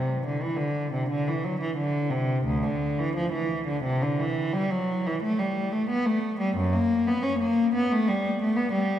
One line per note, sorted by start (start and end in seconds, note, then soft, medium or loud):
0.00 0.24 C3 medium
0.27 0.43 D3 medium
0.42 0.60 E3 medium
0.57 0.93 D3 medium
0.93 1.11 C3 medium
1.10 1.28 D3 medium
1.28 1.45 E3 medium
1.44 1.62 F#3 medium
1.61 1.78 E3 medium
1.77 2.11 D3 medium
2.10 2.46 C3 medium
2.45 2.63 D2 medium
2.63 2.98 D3 medium
2.99 3.16 E3 medium
3.16 3.33 F3 medium
3.32 3.67 E3 medium
3.68 3.84 D3 medium
3.83 4.01 C3 medium
4.02 4.19 D3 medium
4.19 4.53 E3 medium
4.53 4.70 G3 medium
4.70 5.04 F#3 medium
5.06 5.22 E3 medium
5.23 5.38 A3 medium
5.39 5.72 G3 medium
5.72 5.89 A3 medium
5.90 6.06 B3 medium
6.06 6.40 A3 medium
6.40 6.56 G3 medium
6.57 6.73 F#2 medium
6.73 7.06 A#3 medium
7.07 7.23 B3 medium
7.23 7.40 C#4 medium
7.39 7.72 A#3 medium
7.75 7.90 B3 medium
7.92 8.08 A3 medium
8.08 8.41 G3 medium
8.42 8.57 A3 medium
8.56 8.73 B3 medium
8.73 8.99 G3 medium